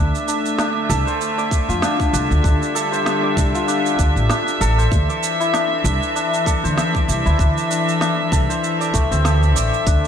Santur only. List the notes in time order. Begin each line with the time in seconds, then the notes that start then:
Already playing: D4
0.28 D4
0.59 D4
0.89 A4
1.07 C5
1.38 D5
1.69 F4
1.82 D4
2.13 D4
2.44 D4
2.75 A4
2.92 C5
3.23 D5
3.54 F4
3.68 D4
3.99 D4
4.30 D4
4.61 A4
4.78 C5
5.09 D5
5.40 E4
5.54 D4
5.85 D4
6.16 D4
6.46 A4
6.64 C5
6.94 D5
7.26 E4
7.39 D4
7.70 D4
8.01 D4
8.32 A4
8.50 C5
8.81 D5
8.94 A3
9.11 C4
9.25 A4
9.56 D5
9.87 D4